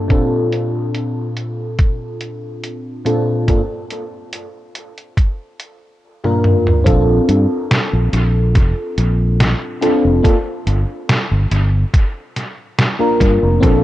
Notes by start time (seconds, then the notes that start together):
Already playing: G2 A#3 D4 F4 G4 A4
0.08 A#2 C4 D4 F4 A4, kick, closed hi-hat
0.52 closed hi-hat
0.95 closed hi-hat
1.37 closed hi-hat
1.79 kick, closed hi-hat
2.21 closed hi-hat
2.64 closed hi-hat
3.05 A#2 C4 D4 F4 A4, closed hi-hat
3.48 G2 A#3 D4 F4 A4, kick, closed hi-hat
3.90 closed hi-hat
4.33 closed hi-hat
4.75 closed hi-hat
4.98 closed hi-hat
5.17 kick, closed hi-hat
5.59 closed hi-hat
6.24 G2 A#3 D4 F4 A#4, high tom
6.44 mid tom
6.67 mid tom
6.84 A#1 C4 D4 F4 A4, kick, closed hi-hat
7.29 G2, closed hi-hat
7.71 snare, closed hi-hat
7.93 A#1
8.13 A#1, closed hi-hat
8.55 F1, kick, closed hi-hat
8.98 A#1, closed hi-hat
9.40 snare, closed hi-hat
9.82 C4 D4 F4 A4, closed hi-hat
10.05 F1
10.23 A#3 D4 F4 A4, kick, closed hi-hat
10.67 G1, closed hi-hat
11.09 snare, closed hi-hat
11.31 G1
11.51 G1, closed hi-hat
11.94 kick, closed hi-hat
12.36 snare, closed hi-hat
12.78 snare, closed hi-hat
12.99 A#3 D4 F4 A#4
13.20 G2, kick, closed hi-hat
13.43 F1
13.60 A#1 C4 D4 F4 A4, kick, closed hi-hat